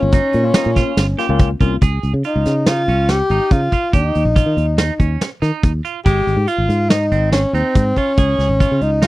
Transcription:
0.00 0.19 G1 loud
0.00 0.17 A#3 medium
0.00 0.17 C#4 medium
0.00 1.37 C#4 medium
0.00 0.18 F4 medium
0.12 0.43 D#4 medium
0.12 kick loud
0.12 closed hi-hat medium
0.33 0.50 A#2 medium
0.33 closed hi-hat medium
0.44 0.91 A#3 medium
0.44 0.91 C#4 medium
0.44 0.91 F4 medium
0.54 0.70 D#4 medium
0.54 snare loud
0.54 closed hi-hat medium
0.66 0.82 A#2 medium
0.76 1.06 F4 medium
0.76 kick medium
0.76 snare soft
0.76 closed hi-hat medium
0.97 1.14 G1 medium
0.97 snare loud
0.97 closed hi-hat medium
1.18 1.25 A#3 medium
1.18 1.25 C#4 medium
1.18 1.26 F4 loud
1.18 1.48 G4 medium
1.18 snare soft
1.18 closed hi-hat medium
1.29 1.53 C#2 medium
1.29 1.50 A#3 loud
1.29 1.50 C#4 medium
1.29 1.50 F4 medium
1.39 kick loud
1.39 closed hi-hat medium
1.60 1.77 C2 medium
1.60 1.74 A#3 medium
1.60 1.74 C#4 medium
1.60 1.74 F4 loud
1.60 1.76 F4 medium
1.60 kick medium
1.60 closed hi-hat medium
1.81 1.98 C#2 medium
1.81 2.12 G#4 medium
1.81 kick loud
1.81 closed hi-hat medium
2.03 2.11 C#2 medium
2.03 closed hi-hat soft
2.14 2.22 C#3 medium
2.24 2.70 D#4 medium
2.24 2.54 F4 medium
2.24 closed hi-hat medium
2.36 2.44 C#2 medium
2.45 2.89 C#3 medium
2.45 snare soft
2.45 closed hi-hat medium
2.66 2.82 D#4 medium
2.66 3.12 F4 medium
2.66 snare loud
2.66 closed hi-hat medium
2.88 3.20 C#2 medium
2.88 3.18 C#4 medium
2.88 closed hi-hat medium
3.09 3.54 G4 medium
3.09 snare medium
3.09 closed hi-hat medium
3.30 3.38 G#1 medium
3.30 3.60 D#4 medium
3.30 closed hi-hat medium
3.51 3.68 C#3 medium
3.51 3.94 F4 medium
3.51 kick loud
3.51 closed hi-hat medium
3.72 3.88 F4 medium
3.72 kick medium
3.72 closed hi-hat medium
3.93 4.10 D#2 medium
3.93 5.17 D#4 medium
3.93 4.23 G4 medium
3.93 kick loud
3.93 closed hi-hat medium
4.15 4.24 D#2 medium
4.15 closed hi-hat medium
4.25 4.42 A#1 medium
4.36 4.65 F4 medium
4.36 kick medium
4.36 closed hi-hat medium
4.46 4.55 D#3 medium
4.57 4.90 D#2 medium
4.57 closed hi-hat medium
4.78 4.93 D#4 medium
4.78 snare loud
4.78 closed hi-hat medium
4.99 5.16 D#2 medium
4.99 5.29 C#4 medium
4.99 kick medium
4.99 closed hi-hat medium
5.21 snare medium
5.21 closed hi-hat medium
5.42 5.50 D#3 medium
5.42 5.72 D#4 medium
5.42 snare soft
5.42 closed hi-hat medium
5.63 5.80 D#2 medium
5.63 kick loud
5.63 closed hi-hat medium
5.85 5.99 F4 medium
5.85 closed hi-hat medium
6.05 6.22 G#1 medium
6.05 6.35 G#3 medium
6.05 6.50 G4 medium
6.05 kick loud
6.05 closed hi-hat medium
6.27 6.35 G#1 medium
6.27 closed hi-hat soft
6.37 6.45 G#2 medium
6.47 6.77 F4 medium
6.47 6.91 F4 medium
6.47 closed hi-hat medium
6.58 6.67 G#1 medium
6.69 7.13 G#2 medium
6.69 closed hi-hat medium
6.89 7.32 D#4 loud
6.89 7.05 D#4 medium
6.89 snare loud
6.89 closed hi-hat medium
7.12 7.44 G#1 medium
7.12 7.41 C4 medium
7.12 closed hi-hat medium
7.32 7.55 C#4 medium
7.32 snare loud
7.32 closed hi-hat medium
7.53 7.62 D#2 medium
7.53 7.99 C4 medium
7.53 7.84 D#4 medium
7.53 closed hi-hat medium
7.75 7.92 G#2 medium
7.75 kick loud
7.75 closed hi-hat medium
7.96 8.84 C#4 medium
7.96 8.12 F4 medium
7.96 kick medium
7.96 closed hi-hat medium
8.17 8.34 C#2 medium
8.17 8.47 G#4 medium
8.17 kick loud
8.17 closed hi-hat medium
8.38 8.47 C#2 medium
8.38 snare soft
8.38 closed hi-hat soft
8.49 8.65 G#1 medium
8.60 8.90 F4 medium
8.60 kick medium
8.60 closed hi-hat medium
8.71 8.79 C#3 medium
8.81 9.07 C#2 medium
8.81 9.06 D#4 medium
8.81 closed hi-hat medium
9.02 9.07 D#4 medium
9.02 snare loud
9.02 closed hi-hat medium

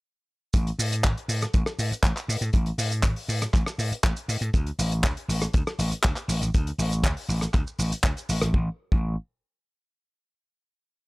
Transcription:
0.53 0.70 A1 medium
0.53 kick loud
0.53 closed hi-hat medium
0.53 shaker medium
0.67 closed hi-hat medium
0.79 1.06 A2 medium
0.79 open hi-hat loud
0.79 shaker loud
0.92 closed hi-hat medium
0.92 shaker medium
1.04 1.12 A1 medium
1.04 kick loud
1.04 clap loud
1.04 closed hi-hat medium
1.04 shaker medium
1.18 closed hi-hat medium
1.28 1.44 A2 medium
1.28 open hi-hat loud
1.28 shaker medium
1.41 cross-stick medium
1.41 closed hi-hat medium
1.41 shaker soft
1.54 1.62 A1 loud
1.54 kick loud
1.54 closed hi-hat medium
1.54 shaker medium
1.66 cross-stick medium
1.66 shaker medium
1.79 1.91 A2 medium
1.79 open hi-hat loud
1.79 shaker medium
1.91 muted slap bass stroke soft
1.91 closed hi-hat medium
1.91 shaker soft
2.03 2.11 A1 loud
2.03 kick loud
2.03 clap loud
2.03 closed hi-hat medium
2.03 shaker medium
2.17 clap soft
2.17 closed hi-hat medium
2.17 shaker medium
2.28 2.37 A2 medium
2.28 open hi-hat loud
2.28 shaker medium
2.41 2.49 A2 medium
2.41 closed hi-hat medium
2.41 shaker soft
2.53 2.70 A1 medium
2.53 kick loud
2.53 closed hi-hat medium
2.53 shaker medium
2.66 closed hi-hat medium
2.78 3.05 A2 medium
2.78 open hi-hat loud
2.78 shaker medium
2.92 closed hi-hat medium
2.92 shaker medium
3.03 3.12 A1 medium
3.03 kick loud
3.03 clap loud
3.03 closed hi-hat medium
3.03 shaker medium
3.16 open hi-hat medium
3.28 3.44 A2 medium
3.28 open hi-hat loud
3.28 shaker medium
3.42 cross-stick medium
3.42 closed hi-hat medium
3.42 shaker medium
3.54 3.62 A1 loud
3.54 kick loud
3.54 clap soft
3.54 closed hi-hat medium
3.54 shaker medium
3.66 cross-stick medium
3.66 shaker medium
3.78 3.91 A2 medium
3.78 open hi-hat loud
3.78 shaker medium
3.92 muted slap bass stroke soft
3.92 closed hi-hat medium
3.92 shaker medium
4.03 4.12 A1 loud
4.03 kick loud
4.03 clap loud
4.03 closed hi-hat medium
4.03 shaker medium
4.16 closed hi-hat medium
4.16 shaker soft
4.28 4.37 A2 medium
4.28 open hi-hat loud
4.28 shaker medium
4.41 4.49 A2 medium
4.41 closed hi-hat medium
4.41 shaker medium
4.54 4.70 D2 loud
4.54 kick loud
4.54 closed hi-hat medium
4.54 shaker medium
4.67 closed hi-hat medium
4.79 5.04 A1 medium
4.79 open hi-hat loud
4.79 shaker medium
4.92 closed hi-hat medium
4.92 shaker medium
5.04 5.12 D2 medium
5.04 kick loud
5.04 clap loud
5.04 closed hi-hat medium
5.04 shaker medium
5.17 closed hi-hat medium
5.28 5.44 A1 medium
5.28 open hi-hat loud
5.28 shaker medium
5.42 cross-stick medium
5.42 closed hi-hat medium
5.42 shaker medium
5.53 5.62 D2 loud
5.53 kick loud
5.53 closed hi-hat medium
5.53 shaker medium
5.67 cross-stick medium
5.67 shaker soft
5.79 5.91 A1 medium
5.79 open hi-hat loud
5.79 shaker medium
5.91 muted slap bass stroke soft
5.91 closed hi-hat medium
5.91 shaker soft
6.03 6.12 D2 loud
6.03 kick loud
6.03 clap loud
6.03 closed hi-hat medium
6.03 shaker medium
6.16 clap soft
6.16 closed hi-hat medium
6.16 shaker soft
6.28 6.36 A1 medium
6.28 open hi-hat loud
6.28 shaker medium
6.41 6.49 A1 medium
6.41 closed hi-hat medium
6.41 shaker medium
6.54 6.70 D2 loud
6.54 kick loud
6.54 closed hi-hat medium
6.54 shaker medium
6.67 closed hi-hat medium
6.78 7.03 A1 medium
6.78 open hi-hat loud
6.78 shaker medium
6.92 closed hi-hat medium
6.92 shaker medium
7.03 7.12 D2 medium
7.03 kick loud
7.03 clap loud
7.03 closed hi-hat medium
7.03 shaker medium
7.17 open hi-hat medium
7.29 7.45 A1 medium
7.29 open hi-hat loud
7.29 shaker medium
7.41 cross-stick medium
7.41 closed hi-hat medium
7.41 shaker medium
7.54 7.62 D2 loud
7.54 kick loud
7.54 clap soft
7.54 closed hi-hat medium
7.54 shaker medium
7.67 shaker soft
7.79 7.91 A1 medium
7.79 open hi-hat loud
7.79 shaker medium
7.92 muted slap bass stroke soft
7.92 closed hi-hat medium
7.92 shaker medium
8.04 8.12 D2 loud
8.04 kick loud
8.04 clap loud
8.04 closed hi-hat medium
8.04 shaker medium
8.17 closed hi-hat medium
8.17 shaker soft
8.29 8.37 A1 medium
8.29 open hi-hat loud
8.29 shaker medium
8.42 8.49 A1 medium
8.42 cross-stick medium
8.42 closed hi-hat medium
8.42 shaker soft
8.54 8.68 A1 loud
8.54 kick loud
8.92 9.15 A1 loud
8.92 kick loud

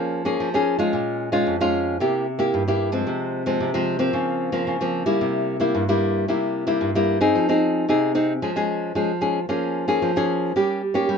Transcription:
0.00 0.37 F3 medium
0.00 0.21 A#3 medium
0.00 0.21 C#4 medium
0.00 0.22 G#4 medium
0.25 0.48 A#3 medium
0.25 0.48 C#4 medium
0.25 0.48 G#4 medium
0.40 0.91 F3 medium
0.54 0.76 A#3 medium
0.54 0.76 C#4 medium
0.54 0.76 G#4 medium
0.79 1.28 G#3 medium
0.79 1.29 C#4 medium
0.79 1.29 F4 medium
0.93 1.44 A#2 medium
1.32 1.55 G#3 medium
1.32 1.55 C#4 medium
1.32 1.55 F4 medium
1.47 1.97 F2 medium
1.60 1.96 G#3 medium
1.60 1.96 C#4 medium
1.60 1.96 F4 medium
2.00 2.51 C3 medium
2.00 2.25 A#3 medium
2.00 2.26 E4 medium
2.00 2.26 G4 medium
2.39 2.62 A#3 medium
2.39 2.62 E4 medium
2.39 2.62 G4 medium
2.54 3.04 G2 medium
2.68 2.90 A#3 medium
2.68 2.90 E4 medium
2.68 2.90 G4 medium
2.92 3.42 F3 medium
2.92 3.42 G#3 medium
2.92 3.42 C4 medium
3.07 3.58 C3 medium
3.46 3.69 F3 medium
3.46 3.69 G#3 medium
3.46 3.69 C4 medium
3.60 4.11 C3 medium
3.74 3.96 F3 medium
3.74 3.97 G#3 medium
3.74 3.97 C4 medium
3.99 4.49 F3 medium
3.99 4.49 A#3 medium
3.99 4.49 C4 medium
4.13 4.64 C#3 medium
4.52 4.76 F3 medium
4.52 4.76 A#3 medium
4.52 4.76 C4 medium
4.67 5.18 C#3 medium
4.81 5.03 F3 medium
4.81 5.03 A#3 medium
4.81 5.03 C4 medium
5.06 5.56 G3 medium
5.06 5.56 A#3 medium
5.06 5.56 E4 medium
5.21 5.72 C3 medium
5.60 5.83 G3 medium
5.60 5.83 A#3 medium
5.60 5.83 E4 medium
5.75 6.25 G2 medium
5.89 6.24 G3 medium
5.89 6.24 A#3 medium
5.89 6.24 E4 medium
6.28 6.79 C3 medium
6.28 6.64 G3 medium
6.28 6.64 A#3 medium
6.28 6.64 E4 medium
6.67 6.90 G3 medium
6.67 6.90 A#3 medium
6.67 6.90 E4 medium
6.81 7.32 G2 medium
6.95 7.18 G3 medium
6.95 7.18 A#3 medium
6.95 7.18 E4 medium
7.21 7.48 C4 medium
7.21 7.48 D#4 medium
7.21 7.48 G#4 medium
7.35 7.86 F3 medium
7.49 7.84 C4 medium
7.49 7.84 D#4 medium
7.49 7.85 G#4 medium
7.89 8.39 C3 medium
7.89 8.11 C4 medium
7.89 8.11 D#4 medium
7.89 8.11 G#4 medium
8.15 8.32 C4 medium
8.15 8.32 D#4 medium
8.15 8.32 G#4 medium
8.42 8.93 F3 medium
8.42 8.50 G#3 medium
8.42 8.50 C#4 soft
8.42 8.50 G#4 medium
8.56 8.91 G#3 medium
8.56 8.91 C#4 medium
8.56 8.92 G#4 medium
8.95 9.46 F3 medium
8.95 9.11 G#3 medium
8.95 9.11 C#4 medium
8.95 9.11 G#4 medium
9.21 9.39 G#3 soft
9.21 9.39 C#4 medium
9.21 9.39 G#4 medium
9.49 9.99 F3 medium
9.49 9.84 A#3 medium
9.49 9.85 C#4 medium
9.49 9.85 G#4 medium
9.88 10.11 A#3 medium
9.88 10.11 C#4 medium
9.88 10.11 G#4 medium
10.02 10.53 F3 medium
10.16 10.52 A#3 medium
10.16 10.52 C#4 medium
10.16 10.52 G#4 medium
10.56 11.06 G3 medium
10.56 10.81 A#3 medium
10.56 10.81 C#4 medium
10.56 10.81 G4 medium
10.94 11.17 A#3 medium
10.94 11.18 C#4 medium
10.94 11.18 G4 medium
11.09 11.18 G3 medium

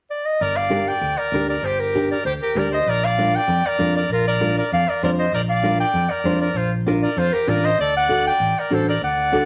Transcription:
0.10 0.27 D5 medium
0.25 0.43 D#5 medium
0.41 0.90 G1 medium
0.41 0.58 A#4 medium
0.41 0.58 D5 loud
0.56 0.87 D5 medium
0.56 0.90 F5 loud
0.70 0.92 D4 medium
0.70 0.92 G4 medium
0.70 0.92 A#4 medium
0.87 1.19 D5 medium
0.87 1.20 G5 loud
1.01 1.14 D2 medium
1.18 1.48 A#4 medium
1.18 1.49 D5 medium
1.32 1.57 D2 medium
1.32 1.54 D4 medium
1.32 1.55 G4 medium
1.32 1.55 A#4 medium
1.49 1.67 A#4 medium
1.49 1.66 D5 medium
1.62 2.12 G1 medium
1.62 1.81 G4 medium
1.62 1.81 C5 medium
1.80 2.11 G4 medium
1.80 2.10 A#4 medium
1.95 2.16 D4 medium
1.95 2.16 G4 medium
1.95 2.16 A#4 medium
2.11 2.25 A#4 medium
2.11 2.25 D5 medium
2.25 2.37 D2 medium
2.25 2.33 G4 medium
2.25 2.32 C5 medium
2.42 2.59 G4 medium
2.42 2.60 A#4 medium
2.55 2.80 D2 medium
2.55 2.77 D4 medium
2.55 2.77 G4 medium
2.55 2.78 A#4 medium
2.55 2.72 A#4 medium
2.55 2.72 D5 medium
2.72 2.90 C5 medium
2.72 2.90 D#5 loud
2.86 3.36 A#1 medium
2.86 3.07 A#4 medium
2.86 3.05 D5 loud
3.04 3.36 D5 medium
3.04 3.37 F5 medium
3.18 3.39 D4 medium
3.18 3.39 F4 medium
3.18 3.40 A#4 medium
3.35 3.68 D5 medium
3.35 3.68 G5 loud
3.48 3.60 F2 loud
3.66 3.96 A#4 medium
3.66 3.96 D5 loud
3.78 4.04 F2 loud
3.78 4.00 D4 medium
3.78 4.01 F4 medium
3.78 4.01 A#4 medium
3.96 4.10 A#4 medium
3.96 4.10 D5 medium
4.09 4.59 A#1 medium
4.09 4.25 A#4 medium
4.14 4.26 F4 medium
4.27 4.56 A#4 medium
4.27 4.55 D5 medium
4.41 4.62 D4 medium
4.41 4.62 F4 medium
4.41 4.63 A#4 medium
4.58 4.72 A#4 medium
4.58 4.71 D5 medium
4.72 4.84 F2 loud
4.72 4.90 D5 medium
4.72 4.91 F5 loud
4.88 5.03 A#4 medium
4.88 5.03 D5 medium
5.02 5.27 F2 loud
5.02 5.24 D4 medium
5.02 5.24 F4 medium
5.02 5.11 A#4 medium
5.02 5.24 C5 medium
5.02 5.11 D5 medium
5.18 5.32 C5 medium
5.18 5.33 D#5 medium
5.33 5.82 A#1 medium
5.33 5.41 A#4 medium
5.33 5.41 D5 medium
5.49 5.78 D5 medium
5.49 5.77 F5 medium
5.63 5.85 D4 medium
5.63 5.85 F4 medium
5.63 5.85 A#4 medium
5.80 6.12 D5 medium
5.80 6.11 G5 loud
5.94 6.06 F2 loud
6.10 6.41 A#4 medium
6.10 6.40 D5 medium
6.24 6.49 F2 loud
6.24 6.47 D4 medium
6.24 6.47 F4 medium
6.24 6.47 C5 medium
6.41 6.58 A#4 medium
6.41 6.58 D5 medium
6.54 7.04 A#1 medium
6.54 6.72 F4 medium
6.54 6.72 C5 medium
6.86 7.08 D4 medium
6.86 7.09 F4 medium
6.86 7.09 A#4 medium
7.02 7.20 A#4 medium
7.02 7.20 D5 medium
7.17 7.29 F2 loud
7.17 7.35 F4 medium
7.17 7.34 C5 loud
7.32 7.51 G4 medium
7.32 7.50 A#4 medium
7.47 7.73 A1 loud
7.47 7.69 D4 medium
7.47 7.70 F4 medium
7.47 7.70 A#4 medium
7.47 7.66 A#4 medium
7.47 7.66 D5 medium
7.65 7.80 C5 medium
7.65 7.80 D#5 loud
7.79 8.28 D2 medium
7.79 7.95 A4 medium
7.79 7.94 D5 loud
7.97 8.24 D5 medium
7.97 8.24 F#5 loud
8.09 8.31 D4 medium
8.09 8.31 F#4 medium
8.09 8.31 A4 medium
8.27 8.60 D5 medium
8.27 8.61 G5 loud
8.40 8.52 A1 medium
8.59 8.76 A#4 medium
8.59 8.75 D5 medium
8.70 8.96 A1 medium
8.70 8.93 D4 medium
8.70 8.93 F#4 medium
8.70 8.93 A4 medium
8.70 8.88 A4 medium
8.70 8.88 C5 medium
8.89 9.02 A#4 medium
8.89 9.03 D5 medium
9.01 9.45 D2 medium
9.01 9.45 D5 medium
9.01 9.45 F#5 loud
9.32 9.45 D4 medium
9.32 9.45 F#4 medium
9.32 9.45 A4 medium

